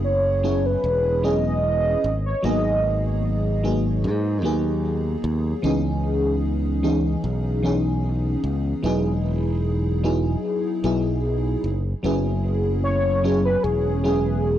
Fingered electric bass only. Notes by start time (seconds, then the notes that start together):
Already playing: F#1
0.84 E1
2.04 G#1
2.44 G#1
4.04 G#2
4.44 D#2
5.24 D#2
5.64 C#2
7.24 B1
8.44 C#2
8.84 E1
10.84 B1
11.64 F#1
12.04 F#1
13.64 E1